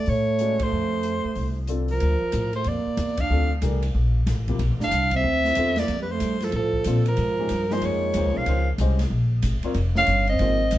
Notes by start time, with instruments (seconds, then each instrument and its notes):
Already playing: soprano saxophone D5
0.06 upright bass A2, trombone A3, soprano saxophone C#5, open hi-hat
0.39 grand piano G#3 C#4 F#4 B4 D5, closed hi-hat
0.59 trombone A3, soprano saxophone C5, kick, ride
0.72 upright bass F2
1.03 closed hi-hat
1.25 muted upright bass stroke
1.35 upright bass C2, open hi-hat
1.67 grand piano D3 G3 C4 F4 A4, closed hi-hat
1.88 trombone F3, soprano saxophone A#4, open hi-hat
2.00 upright bass D2, ride
2.21 muted upright bass stroke
2.32 upright bass A2, hi-hat pedal, ride
2.53 trombone A3, soprano saxophone C5, ride
2.64 upright bass F2, trombone A#3, soprano saxophone D5, ride
2.86 muted upright bass stroke
2.97 upright bass E2, hi-hat pedal, ride
3.17 trombone D4, soprano saxophone F5, kick, ride
3.30 upright bass D2, grand piano D3 G3 C4 F4 A4
3.62 upright bass C2, grand piano E3 A3 D4 G4 A#4, hi-hat pedal, ride
3.82 ride
3.95 upright bass A#1
4.26 upright bass A1, snare, hi-hat pedal, ride
4.48 grand piano C3 F3 A#3 E4 G4, kick, ride
4.59 upright bass A#1, ride
4.70 upright bass A1
4.80 upright bass F1, trombone D4, soprano saxophone F5, snare
4.91 upright bass C2, hi-hat pedal, ride
5.11 trombone C4, kick, ride
5.16 soprano saxophone E5
5.24 upright bass D2
5.44 snare
5.55 upright bass E2, grand piano D3 G3 C4 F4 A4, hi-hat pedal, ride
5.76 trombone A#3, soprano saxophone D5, snare, ride
5.88 upright bass F2, ride
6.00 trombone G3, soprano saxophone B4
6.09 trombone A3, soprano saxophone C5
6.20 upright bass G2, hi-hat pedal, ride
6.40 trombone F3, soprano saxophone A4, snare, ride
6.52 upright bass A2, trombone F3, ride
6.56 soprano saxophone A4
6.73 kick
6.84 upright bass A#2, grand piano D3 G3 C4 F4 A4, hi-hat pedal, ride
7.06 trombone F3, soprano saxophone A#4, ride
7.17 upright bass G#2, ride
7.39 grand piano D#3 G#3 C#4 G4 A#4
7.49 upright bass G2, hi-hat pedal, ride
7.70 grand piano F3 A#3 D#4 G#4 D#5, trombone G#3, soprano saxophone C5, snare
7.82 upright bass F2, trombone G#3, soprano saxophone C#5, ride
8.14 upright bass D#2, grand piano F3 A#3 D#4 G#4 C5, hi-hat pedal, ride
8.25 upright bass C#2
8.34 upright bass C2, trombone C#4, soprano saxophone F5
8.46 upright bass C#2, grand piano F3 A#3 D#4 G#4 C5, ride
8.78 upright bass C2, grand piano G#3 C#4 G4 C5 D#5, hi-hat pedal, ride
8.99 snare, ride
9.10 upright bass A#1
9.42 upright bass G#1, hi-hat pedal, ride
9.63 grand piano G3 C4 F4 A#4 C#5, muted upright bass stroke, kick, ride
9.74 upright bass F1, ride
9.95 trombone C#4, soprano saxophone F5, snare
10.06 upright bass G1, hi-hat pedal, ride
10.27 trombone C4, soprano saxophone D#5, ride
10.39 upright bass G#1, grand piano F3 A#3 D#4 G#4 C5, ride
10.71 upright bass C2, hi-hat pedal, ride